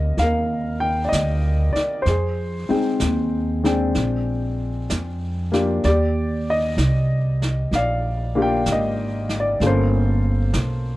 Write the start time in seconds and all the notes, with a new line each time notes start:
Already playing: D2 G3 A#3 C4 D#4 A#4 D5 D#5
0.17 D#2 F5, brush sweep, snare
0.22 A#4
0.80 G5
1.05 D5 D#5
1.12 D2, snare, hi-hat pedal
1.73 D5, muted upright bass stroke, snare
2.02 F2 C5, brush sweep, snare
2.08 G#4
2.69 G#3 C4 D#4 G5, muted upright bass stroke
3.00 D#2, snare, hi-hat pedal
3.64 G#3 C4 D4 G5, snare
3.95 A#1, brush sweep, snare
4.90 F2, snare, hi-hat pedal
5.52 A#3 D4 F4 G4, snare
5.84 D#2 D5, brush sweep, snare
5.88 G4
6.50 D#5
6.77 C2, snare, hi-hat pedal
7.42 snare
7.71 A#1 F5, brush sweep, snare
7.77 D5
8.35 A#3 D4 F4 G4
8.42 G5
8.66 G#1, snare, hi-hat pedal
8.72 D#5
9.29 snare
9.40 D5
9.60 G1 A#3 C#4 F4 A4, brush sweep, snare
9.66 C5
10.53 B1, snare, hi-hat pedal